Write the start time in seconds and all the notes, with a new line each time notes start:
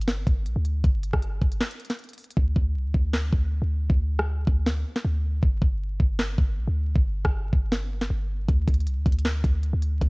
Already playing: G1
0.01 closed hi-hat
0.08 snare, closed hi-hat
0.27 G1, kick, closed hi-hat
0.46 A#1, closed hi-hat
0.56 D2
0.65 closed hi-hat
0.84 G1, kick, closed hi-hat
1.03 closed hi-hat
1.13 G1, kick, cross-stick
1.22 closed hi-hat
1.41 G1, kick, closed hi-hat
1.52 closed hi-hat
1.60 snare, closed hi-hat
1.71 closed hi-hat
1.80 closed hi-hat
1.85 closed hi-hat
1.90 snare, closed hi-hat
1.94 closed hi-hat
1.99 closed hi-hat
2.04 closed hi-hat
2.09 closed hi-hat
2.13 closed hi-hat
2.18 closed hi-hat, open hi-hat
2.24 closed hi-hat
2.31 closed hi-hat
2.37 D2, kick
2.56 D2, kick
2.75 C2
2.85 D2
2.94 D2, kick
3.13 snare
3.33 D2, kick
3.62 D2
3.90 D2, kick
4.19 cross-stick
4.47 D2, kick
4.66 snare
4.96 snare
5.05 D2
5.43 G1, kick
5.62 G1, kick
6.00 G1, kick
6.19 snare
6.38 G1, kick
6.57 A#1
6.68 D2
6.96 G1, kick
7.25 G1, kick, cross-stick
7.53 G1, kick
7.72 snare
8.01 snare
8.10 G1
8.48 D2, kick, closed hi-hat
8.68 D2, kick, closed hi-hat
8.74 closed hi-hat
8.80 closed hi-hat
8.87 C2, closed hi-hat
8.97 D2
9.06 D2, kick, closed hi-hat
9.12 closed hi-hat
9.19 closed hi-hat
9.25 snare, closed hi-hat
9.44 D2, kick, closed hi-hat
9.63 closed hi-hat
9.73 D2
9.82 closed hi-hat
10.01 D2, kick, closed hi-hat